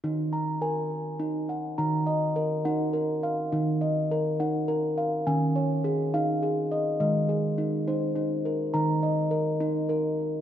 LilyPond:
<<
  \new Staff \with { instrumentName = "Steel tongue drum" } { \time 6/8 \key ees \dorian \tempo 4. = 69 << { r8 bes''8 aes''4. ges''8 | bes''8 ees''4 ges''4 f''8~ | f''8 ees''4 ges''4 f''8 | aes''8 des''4 f''4 ees''8 |
ees''8 aes'4 c''4 bes'8 | bes''8 ees''4. r4 | } \\ { ees'4 bes'4 ees'4 | ees'4 bes'4 bes'4 | ees'4 bes'4 bes'4 | des'4 aes'4 aes'4 |
aes4 ees'4 ees'4 | ees'4 bes'4 bes'4 | } >> }
  \new Staff \with { instrumentName = "Steel tongue drum" } { \clef bass \time 6/8 \key ees \dorian ees2. | ees8 r4 ees'4. | ees8 r4 ees'4. | ees8 r4 ees'4. |
ees8 r4 ees'4. | ees8 r4 ees'4. | }
>>